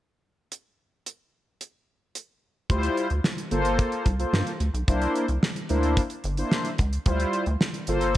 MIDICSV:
0, 0, Header, 1, 4, 480
1, 0, Start_track
1, 0, Tempo, 545455
1, 455, Time_signature, 4, 2, 24, 8
1, 7193, End_track
2, 0, Start_track
2, 0, Title_t, "Analog polysynth"
2, 0, Program_c, 0, 90
2, 2372, Note_on_c, 0, 55, 100
2, 2375, Note_on_c, 0, 64, 84
2, 2375, Note_on_c, 0, 65, 90
2, 2380, Note_on_c, 0, 72, 116
2, 2707, Note_off_c, 0, 55, 0
2, 2708, Note_off_c, 0, 64, 0
2, 2709, Note_off_c, 0, 65, 0
2, 2711, Note_off_c, 0, 72, 0
2, 3087, Note_on_c, 0, 58, 97
2, 3092, Note_on_c, 0, 65, 85
2, 3093, Note_on_c, 0, 69, 89
2, 3096, Note_on_c, 0, 72, 106
2, 3571, Note_off_c, 0, 58, 0
2, 3574, Note_off_c, 0, 65, 0
2, 3574, Note_off_c, 0, 69, 0
2, 3575, Note_off_c, 0, 72, 0
2, 3689, Note_on_c, 0, 58, 79
2, 3692, Note_on_c, 0, 65, 64
2, 3694, Note_on_c, 0, 69, 64
2, 3694, Note_on_c, 0, 72, 83
2, 3970, Note_off_c, 0, 58, 0
2, 3971, Note_off_c, 0, 65, 0
2, 3973, Note_off_c, 0, 69, 0
2, 3973, Note_off_c, 0, 72, 0
2, 4288, Note_on_c, 0, 58, 100
2, 4291, Note_on_c, 0, 62, 88
2, 4293, Note_on_c, 0, 64, 88
2, 4295, Note_on_c, 0, 72, 106
2, 4625, Note_off_c, 0, 58, 0
2, 4627, Note_off_c, 0, 62, 0
2, 4627, Note_off_c, 0, 64, 0
2, 4629, Note_off_c, 0, 72, 0
2, 5007, Note_on_c, 0, 58, 94
2, 5009, Note_on_c, 0, 62, 84
2, 5011, Note_on_c, 0, 64, 86
2, 5014, Note_on_c, 0, 72, 92
2, 5289, Note_off_c, 0, 58, 0
2, 5290, Note_off_c, 0, 62, 0
2, 5291, Note_off_c, 0, 64, 0
2, 5292, Note_off_c, 0, 72, 0
2, 5611, Note_on_c, 0, 58, 76
2, 5614, Note_on_c, 0, 62, 74
2, 5617, Note_on_c, 0, 64, 65
2, 5620, Note_on_c, 0, 72, 92
2, 5891, Note_off_c, 0, 58, 0
2, 5893, Note_off_c, 0, 62, 0
2, 5894, Note_off_c, 0, 64, 0
2, 5895, Note_off_c, 0, 72, 0
2, 6213, Note_on_c, 0, 55, 95
2, 6216, Note_on_c, 0, 64, 89
2, 6217, Note_on_c, 0, 65, 96
2, 6221, Note_on_c, 0, 72, 106
2, 6548, Note_off_c, 0, 55, 0
2, 6549, Note_off_c, 0, 64, 0
2, 6550, Note_off_c, 0, 65, 0
2, 6551, Note_off_c, 0, 72, 0
2, 6935, Note_on_c, 0, 58, 94
2, 6938, Note_on_c, 0, 65, 84
2, 6939, Note_on_c, 0, 69, 92
2, 6943, Note_on_c, 0, 72, 112
2, 7193, Note_off_c, 0, 58, 0
2, 7193, Note_off_c, 0, 65, 0
2, 7193, Note_off_c, 0, 69, 0
2, 7193, Note_off_c, 0, 72, 0
2, 7193, End_track
3, 0, Start_track
3, 0, Title_t, "Analog synth bass"
3, 0, Program_c, 1, 38
3, 2372, Note_on_c, 1, 38, 106
3, 2544, Note_off_c, 1, 38, 0
3, 2734, Note_on_c, 1, 38, 92
3, 2820, Note_off_c, 1, 38, 0
3, 3095, Note_on_c, 1, 31, 81
3, 3350, Note_off_c, 1, 31, 0
3, 3571, Note_on_c, 1, 36, 85
3, 3743, Note_off_c, 1, 36, 0
3, 3811, Note_on_c, 1, 43, 100
3, 3898, Note_off_c, 1, 43, 0
3, 4050, Note_on_c, 1, 38, 85
3, 4137, Note_off_c, 1, 38, 0
3, 4169, Note_on_c, 1, 35, 85
3, 4257, Note_off_c, 1, 35, 0
3, 4293, Note_on_c, 1, 36, 102
3, 4464, Note_off_c, 1, 36, 0
3, 4653, Note_on_c, 1, 36, 90
3, 4739, Note_off_c, 1, 36, 0
3, 5018, Note_on_c, 1, 38, 85
3, 5273, Note_off_c, 1, 38, 0
3, 5494, Note_on_c, 1, 31, 89
3, 5664, Note_off_c, 1, 31, 0
3, 5975, Note_on_c, 1, 37, 90
3, 6145, Note_off_c, 1, 37, 0
3, 6212, Note_on_c, 1, 38, 107
3, 6384, Note_off_c, 1, 38, 0
3, 6570, Note_on_c, 1, 38, 90
3, 6657, Note_off_c, 1, 38, 0
3, 6935, Note_on_c, 1, 31, 94
3, 7190, Note_off_c, 1, 31, 0
3, 7193, End_track
4, 0, Start_track
4, 0, Title_t, "Drums"
4, 456, Note_on_c, 9, 42, 54
4, 544, Note_off_c, 9, 42, 0
4, 936, Note_on_c, 9, 42, 58
4, 1024, Note_off_c, 9, 42, 0
4, 1416, Note_on_c, 9, 42, 59
4, 1504, Note_off_c, 9, 42, 0
4, 1895, Note_on_c, 9, 42, 55
4, 1983, Note_off_c, 9, 42, 0
4, 2374, Note_on_c, 9, 36, 91
4, 2375, Note_on_c, 9, 42, 80
4, 2462, Note_off_c, 9, 36, 0
4, 2463, Note_off_c, 9, 42, 0
4, 2492, Note_on_c, 9, 42, 62
4, 2580, Note_off_c, 9, 42, 0
4, 2617, Note_on_c, 9, 42, 63
4, 2705, Note_off_c, 9, 42, 0
4, 2729, Note_on_c, 9, 42, 35
4, 2817, Note_off_c, 9, 42, 0
4, 2854, Note_on_c, 9, 38, 124
4, 2942, Note_off_c, 9, 38, 0
4, 2976, Note_on_c, 9, 42, 51
4, 3064, Note_off_c, 9, 42, 0
4, 3091, Note_on_c, 9, 42, 61
4, 3179, Note_off_c, 9, 42, 0
4, 3211, Note_on_c, 9, 42, 55
4, 3299, Note_off_c, 9, 42, 0
4, 3334, Note_on_c, 9, 42, 77
4, 3335, Note_on_c, 9, 36, 110
4, 3422, Note_off_c, 9, 42, 0
4, 3423, Note_off_c, 9, 36, 0
4, 3450, Note_on_c, 9, 42, 49
4, 3538, Note_off_c, 9, 42, 0
4, 3570, Note_on_c, 9, 42, 61
4, 3572, Note_on_c, 9, 36, 89
4, 3658, Note_off_c, 9, 42, 0
4, 3660, Note_off_c, 9, 36, 0
4, 3693, Note_on_c, 9, 42, 49
4, 3781, Note_off_c, 9, 42, 0
4, 3816, Note_on_c, 9, 38, 111
4, 3904, Note_off_c, 9, 38, 0
4, 3932, Note_on_c, 9, 42, 52
4, 4020, Note_off_c, 9, 42, 0
4, 4051, Note_on_c, 9, 42, 74
4, 4139, Note_off_c, 9, 42, 0
4, 4176, Note_on_c, 9, 42, 55
4, 4264, Note_off_c, 9, 42, 0
4, 4293, Note_on_c, 9, 42, 85
4, 4295, Note_on_c, 9, 36, 99
4, 4381, Note_off_c, 9, 42, 0
4, 4383, Note_off_c, 9, 36, 0
4, 4414, Note_on_c, 9, 42, 65
4, 4502, Note_off_c, 9, 42, 0
4, 4536, Note_on_c, 9, 42, 65
4, 4624, Note_off_c, 9, 42, 0
4, 4650, Note_on_c, 9, 42, 41
4, 4738, Note_off_c, 9, 42, 0
4, 4777, Note_on_c, 9, 38, 115
4, 4865, Note_off_c, 9, 38, 0
4, 4894, Note_on_c, 9, 42, 48
4, 4982, Note_off_c, 9, 42, 0
4, 5009, Note_on_c, 9, 42, 58
4, 5097, Note_off_c, 9, 42, 0
4, 5131, Note_on_c, 9, 42, 52
4, 5219, Note_off_c, 9, 42, 0
4, 5252, Note_on_c, 9, 42, 84
4, 5254, Note_on_c, 9, 36, 114
4, 5340, Note_off_c, 9, 42, 0
4, 5342, Note_off_c, 9, 36, 0
4, 5368, Note_on_c, 9, 42, 54
4, 5456, Note_off_c, 9, 42, 0
4, 5490, Note_on_c, 9, 42, 64
4, 5578, Note_off_c, 9, 42, 0
4, 5609, Note_on_c, 9, 42, 50
4, 5697, Note_off_c, 9, 42, 0
4, 5733, Note_on_c, 9, 38, 106
4, 5821, Note_off_c, 9, 38, 0
4, 5849, Note_on_c, 9, 42, 50
4, 5937, Note_off_c, 9, 42, 0
4, 5970, Note_on_c, 9, 42, 72
4, 5976, Note_on_c, 9, 36, 82
4, 6058, Note_off_c, 9, 42, 0
4, 6064, Note_off_c, 9, 36, 0
4, 6095, Note_on_c, 9, 42, 53
4, 6183, Note_off_c, 9, 42, 0
4, 6210, Note_on_c, 9, 42, 87
4, 6213, Note_on_c, 9, 36, 98
4, 6298, Note_off_c, 9, 42, 0
4, 6301, Note_off_c, 9, 36, 0
4, 6333, Note_on_c, 9, 42, 59
4, 6421, Note_off_c, 9, 42, 0
4, 6452, Note_on_c, 9, 42, 64
4, 6540, Note_off_c, 9, 42, 0
4, 6567, Note_on_c, 9, 42, 41
4, 6655, Note_off_c, 9, 42, 0
4, 6694, Note_on_c, 9, 38, 120
4, 6782, Note_off_c, 9, 38, 0
4, 6812, Note_on_c, 9, 42, 49
4, 6900, Note_off_c, 9, 42, 0
4, 6925, Note_on_c, 9, 42, 67
4, 7013, Note_off_c, 9, 42, 0
4, 7049, Note_on_c, 9, 42, 51
4, 7137, Note_off_c, 9, 42, 0
4, 7193, End_track
0, 0, End_of_file